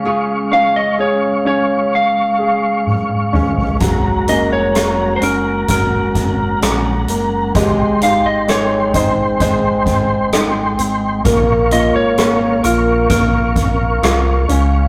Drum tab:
HH |----------------|x-x-x-x-x-x-x-x-|x-x-x-x-x-x-x-x-|x-x-x-x-x-x-x-x-|
SD |----------------|----r-------r---|----r-------r---|----r-------r---|
T1 |------------o---|----------------|----------------|----------------|
T2 |--------------o-|----------------|----------------|----------------|
FT |---------------o|----------------|----------------|----------------|
BD |----------------|o-------o-o-----|o-----o-o-o-----|o-------o-o-----|